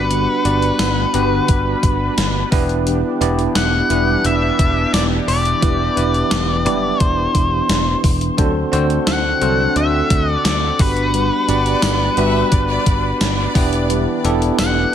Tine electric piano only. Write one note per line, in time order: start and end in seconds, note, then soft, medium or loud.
0.00 0.31 B3 medium
0.00 0.31 D4 medium
0.00 0.31 F#4 medium
0.00 0.31 G4 medium
0.00 0.32 B4 medium
0.45 0.92 B3 medium
0.45 0.92 D4 medium
0.45 0.92 F#4 medium
0.45 0.93 G4 medium
0.45 0.93 D5 medium
1.14 2.09 B3 medium
1.14 2.09 D4 medium
1.14 2.09 F#4 medium
1.14 2.09 G4 medium
1.14 2.09 B4 loud
2.52 3.07 B3 loud
2.52 3.07 D4 medium
2.52 3.07 E4 medium
2.52 3.07 G4 medium
2.52 3.08 B4 loud
3.21 3.68 B3 medium
3.21 3.68 D4 medium
3.21 3.69 E4 medium
3.21 3.69 G4 medium
3.21 3.69 D5 loud
3.90 4.85 B3 medium
3.90 4.85 D4 medium
3.90 4.85 E4 medium
3.90 4.85 G4 medium
3.90 4.85 B4 medium
5.62 5.86 B3 medium
5.62 5.86 D4 medium
5.62 5.86 E4 medium
5.62 5.86 G4 medium
5.62 5.86 B4 medium
5.96 6.44 B3 medium
5.96 6.44 D4 medium
5.96 6.44 E4 medium
5.96 6.44 G4 medium
5.96 6.44 B4 medium
6.65 7.60 B3 medium
6.65 7.60 D4 medium
6.65 7.60 E4 medium
6.65 7.61 G4 medium
6.65 7.61 D5 loud
8.37 8.61 C4 medium
8.37 8.62 D4 medium
8.37 8.62 F#4 medium
8.37 8.62 A4 medium
8.37 8.62 C5 loud
8.72 9.20 C4 medium
8.72 9.20 D4 medium
8.72 9.20 F#4 medium
8.72 9.20 A4 medium
8.72 9.20 C5 loud
9.41 10.36 C4 medium
9.41 10.36 D4 medium
9.41 10.36 F#4 medium
9.41 10.36 A4 medium
9.41 10.37 C5 medium
10.79 11.35 B3 medium
10.79 11.35 D4 medium
10.79 11.35 F#4 medium
10.79 11.35 G4 medium
10.79 11.35 B4 medium
11.48 11.96 B3 medium
11.48 11.96 D4 medium
11.48 11.96 F#4 medium
11.48 11.96 G4 medium
11.48 11.96 D5 medium
12.17 13.12 B3 medium
12.17 13.12 D4 medium
12.17 13.12 F#4 medium
12.17 13.12 G4 medium
12.17 13.13 B4 loud
13.55 14.10 B3 loud
13.55 14.11 D4 medium
13.55 14.11 E4 loud
13.55 14.11 G4 medium
13.55 14.11 B4 loud
14.24 14.72 B3 medium
14.24 14.72 D4 medium
14.24 14.72 E4 medium
14.24 14.72 G4 medium
14.24 14.72 A4 loud